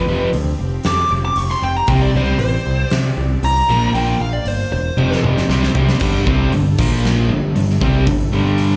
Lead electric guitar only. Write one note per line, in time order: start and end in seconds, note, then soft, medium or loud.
0.00 0.31 B4 loud
0.86 1.11 D6 loud
1.25 1.38 D6 loud
1.38 1.50 C#6 loud
1.51 1.63 C6 loud
1.63 1.76 G5 medium
1.77 1.89 A#5 medium
1.89 2.01 G5 loud
2.02 2.14 D5 loud
2.17 2.38 C5 medium
2.39 2.90 C5 loud
3.45 3.94 A#5 loud
3.94 4.19 G5 loud
4.21 4.33 F5 medium
4.33 4.48 D5 loud
4.48 4.71 C5 medium
4.73 5.22 C5 loud